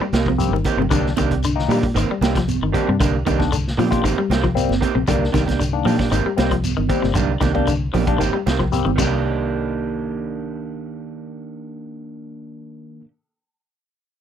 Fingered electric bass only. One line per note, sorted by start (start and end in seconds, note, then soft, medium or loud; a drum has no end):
0.13 0.49 C2 medium
0.51 0.63 G1 medium
0.77 0.89 G1 medium
0.91 1.15 C2 medium
1.18 1.65 C2 medium
1.68 1.92 A#2 medium
1.95 2.07 G#1 medium
2.21 2.57 C2 medium
2.62 2.73 G1 medium
2.89 2.99 G2 medium
3.00 3.23 C2 medium
3.27 3.74 C2 medium
3.78 4.02 A#2 medium
4.04 4.16 G#1 medium
4.30 4.66 C2 medium
4.69 4.81 G1 medium
4.95 5.07 A#1 medium
5.08 5.32 C2 medium
5.34 5.82 C2 medium
5.85 6.09 A#2 medium
6.12 6.24 G#1 medium
6.25 muted fingered electric bass stroke soft
6.38 6.74 C2 medium
6.78 6.89 G1 medium
7.04 7.15 G1 medium
7.15 7.39 C2 medium
7.41 7.90 C2 medium
7.94 8.18 A#1 medium
8.19 8.32 G#1 medium
8.47 8.83 C2 medium
8.86 8.98 G1 medium
8.98 13.00 C2 medium